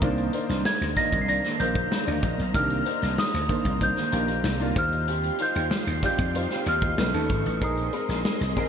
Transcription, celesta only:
0.66 0.80 G#6 medium
0.97 1.22 A#6 loud
1.21 1.28 C7 medium
1.29 1.61 A#6 loud
1.60 2.58 G6 medium
2.55 3.20 F6 medium
3.19 3.84 D#6 medium
3.83 4.73 G6 loud
4.78 5.43 F6 medium
5.42 6.00 G6 loud
6.06 6.70 G6 loud
6.69 7.65 F6 medium
7.64 8.69 D#6 medium

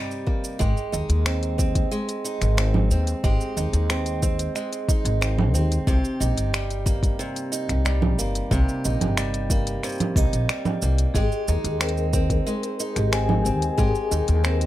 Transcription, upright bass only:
0.60 0.71 G#1 medium
0.93 1.04 D#2 medium
1.09 1.83 D#2 medium
2.41 2.92 G#1 loud
2.91 3.12 D#2 medium
3.24 3.35 G#1 medium
3.57 3.68 D#2 loud
3.73 4.46 D#2 medium
5.05 5.54 G#1 medium
5.54 5.76 D#2 medium
5.87 5.98 C2 medium
6.21 6.37 A#1 loud
6.37 7.10 G1 medium
7.69 8.18 C2 medium
8.18 8.40 G1 medium
8.51 8.62 C2 medium
8.85 9.01 A#1 loud
9.01 9.74 G1 medium
10.16 10.27 C2 loud
10.33 10.44 A#1 medium
10.82 11.04 C2 medium
11.15 11.26 G#1 medium
11.48 11.59 D#2 loud
11.64 12.38 D#2 medium
12.96 13.47 G#1 loud
13.46 13.67 D#2 medium
13.78 13.89 G#1 medium
14.12 14.22 D#2 medium
14.29 14.66 D#2 medium

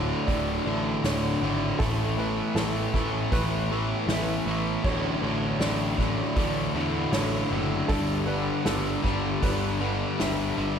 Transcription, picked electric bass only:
0.00 0.12 D1 medium
0.28 0.58 D1 medium
0.65 0.96 A1 medium
1.04 1.34 D1 medium
1.41 1.72 G#1 medium
1.80 2.40 A1 loud
2.55 2.85 A1 loud
2.94 3.24 A1 loud
3.32 3.92 A1 loud
4.07 4.38 A1 loud
4.45 4.76 A1 loud
4.84 5.15 A1 loud
5.22 5.52 A1 loud
5.60 6.21 A1 loud
6.36 6.67 A1 loud
6.74 7.05 E2 medium
7.12 7.43 A1 loud
7.51 7.81 F#1 loud
7.89 8.50 G1 loud
8.66 8.96 G1 loud
9.04 9.35 G1 medium
9.42 10.03 G1 loud
10.20 10.50 G1 medium
10.58 10.79 G1 loud

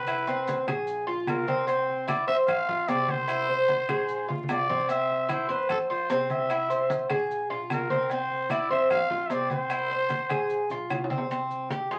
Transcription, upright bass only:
0.00 0.61 C2 medium
0.67 1.24 A#1 medium
1.28 2.22 C2 medium
2.28 2.84 F2 medium
2.89 3.83 C2 medium
3.89 4.45 A#1 medium
4.49 5.43 C2 medium
5.49 6.05 F2 medium
6.10 7.04 C2 medium
7.10 7.47 A#1 medium
7.50 7.69 A#1 medium
7.70 8.64 C2 medium
8.70 9.26 F2 medium
9.30 10.24 C2 medium
10.30 10.68 A#1 medium
10.70 10.89 A#1 medium
10.90 11.85 C2 medium
11.91 11.99 F2 medium

